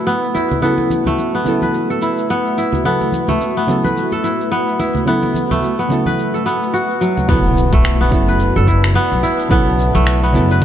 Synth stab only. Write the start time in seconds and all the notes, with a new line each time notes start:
Already playing: C#3 F#3 B3 E4 A4
0.61 C#3 F#3 B3 E4 A4
1.44 C#3 F#3 B3 E4
1.48 A4
2.83 C#3 F#3 B3 E4 A4
3.67 C#3 F#3 B3 E4 A4
5.05 C#3 F#3 B3 E4 A4
5.88 C#3 F#3 B3 E4 A4
7.27 C#3 F#3 B3 E4 A4
8.10 C#3 F#3 B3 E4
8.14 A4
9.48 C#3 F#3 B3 E4
9.53 A4
10.32 C#3 F#3 B3 E4 A4